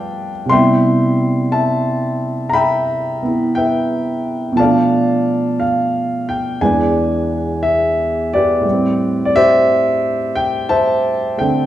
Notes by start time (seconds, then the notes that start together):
Already playing: G2 F3 G3 A3 B3 A4 B4 D5 F5 G5 A5
0.46 C3 G3 C6
0.52 B3 E5 G5
0.56 E4
1.52 E5 A5
2.49 A#5 B5
2.54 E5 G5
3.23 B3 E4
3.55 B4 E5 G5
4.52 B2 F3
4.57 A3 D5 F5 A5
4.63 D4
5.60 F5
6.29 G5
6.61 E2 E3 G#3 D4 B4 D5 G#5
7.63 E5
8.33 G4 B4 D5
8.61 A2 G3
8.71 C4
9.25 D5
9.36 G4 C5 E5
10.35 G5
10.69 C5 E5 A5
11.37 D3 A3 C4 G5